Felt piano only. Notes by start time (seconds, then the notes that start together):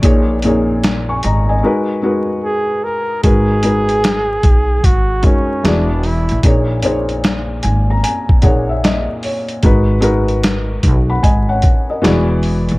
0.02 A#2 A#3 D#4 G#4 C#5
0.44 A#2 A#3 D#4 G#4 C#5
1.09 G#5 C#6
1.24 D#5 A#5
1.49 D#5 G#5
1.63 G#3 D#4 F#4 A#4 B4
2.02 G#3 D#4 F#4 A#4 B4
3.23 G#3 D#4 F#4 A#4 B4
3.63 G#3 D#4 F#4 A#4 B4
5.22 G#3 D#4 F#4 A#4 C#5
5.63 E3 B3 F#4 G#4 D5
6.44 A#2 A#3 D#4 G#4 C#5
6.82 A#2 A#3 D#4 G#4 C5
6.91 C#5
7.63 G#5
7.90 A#5
8.03 G#5
8.42 A#2 A#3 D#4 G#4 C#5 F#5
8.69 E5
8.83 D#5
9.24 C#5
9.63 G#3 D#4 F#4 A#4 B4
10.00 G#3 D#4 F#4 A#4 B4
11.10 F#5 B5
11.23 D#5 G#5
11.49 C#5 F#5
11.90 A#4 D#5
12.02 E3 B3 F#4 G#4 D5